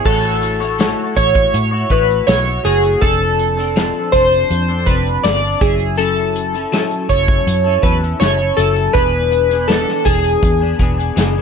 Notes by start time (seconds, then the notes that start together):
0.05 A1 A3 E4 F#4 A4 C#5, kick, crash
0.43 closed hi-hat
0.60 E4 F#4 C#5, closed hi-hat
0.79 A3 E4 F#4 C#5, snare, closed hi-hat
1.15 A1 A3 E4 F#4 C#5, kick, closed hi-hat
1.35 kick, closed hi-hat
1.54 A2, closed hi-hat
1.71 E4 F#4 C#5
1.90 A1 A3 E4 F#4 B4 C#5, kick, closed hi-hat
2.10 closed hi-hat
2.27 B1 A3 E4 F#4 C#5, snare, closed hi-hat
2.45 E4 F#4 C#5, closed hi-hat
2.64 F#1 A3 E4 F#4 G#4 C#5, closed hi-hat
2.84 closed hi-hat
3.01 F1 F3 C4 D4 A4, kick, closed hi-hat
3.39 closed hi-hat
3.57 C4 D4 A4, closed hi-hat
3.76 F3 C4 D4 A4, snare, closed hi-hat
4.12 F1 F3 C4 D4 A4 C5, kick, closed hi-hat
4.31 closed hi-hat
4.50 F2, closed hi-hat
4.69 C4 D4 A4
4.86 F1 F3 C4 D4 B4, kick, closed hi-hat
4.90 A4
5.06 closed hi-hat
5.23 G1 F3 C4 D4 A4 D5, snare, closed hi-hat
5.43 C4 D4 A4
5.61 F#1 F#3 C#4 E4 G#4, kick, closed hi-hat
5.80 closed hi-hat
5.98 F#3 C#4 E4 A4, closed hi-hat
6.16 closed hi-hat
6.36 closed hi-hat
6.53 C#4 E4 A4, closed hi-hat
6.72 F#3 C#4 E4 A4, snare, closed hi-hat
6.91 closed hi-hat
7.09 F#1 F#3 C#4 E4 A4 C#5, kick, closed hi-hat
7.28 kick, closed hi-hat
7.47 F#2, closed hi-hat
7.64 C#4 E4 A4
7.82 E2 F#3 C#4 E4 A4 B4, kick, closed hi-hat
8.02 C#4 E4 A4, closed hi-hat
8.20 F#1 F#3 C#4 E4 A4 C#5, snare, closed hi-hat
8.38 C#4 E4 A4
8.57 F#1 F#3 C#4 E4 A4, closed hi-hat
8.76 closed hi-hat
8.93 E1 E3 B3 D4 G#4 B4, kick, closed hi-hat
9.32 closed hi-hat
9.50 B3 D4 G#4, closed hi-hat
9.68 E3 B3 D4 A4, snare, closed hi-hat
9.88 snare
9.99 A4
10.05 E1 E3 B3 D4 G#4, kick, closed hi-hat
10.24 closed hi-hat
10.43 E2, kick, closed hi-hat
10.60 B3 D4 G#4
10.79 E1 E3 B3 D4 G#4, kick, closed hi-hat
10.98 B3 D4 G#4, closed hi-hat
11.16 F#1 E3 B3 D4 G#4, snare, closed hi-hat
11.35 B3 D4 G#4